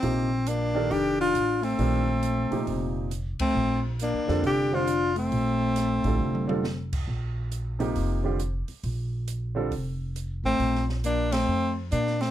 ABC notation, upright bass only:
X:1
M:4/4
L:1/8
Q:"Swing" 1/4=136
K:Bb
V:1 name="Upright bass" clef=bass
B,,,4 F,,,2 A,,,2 | B,,,3 z F,,,3 z | B,,,2- (3B,,, D,, F,, F,,,4 | B,,,3 A,,, F,,,4 |
B,,,4 F,,,3 z | B,,,4 F,,,3 A,,, | B,,,4 F,,2 B,,2 |]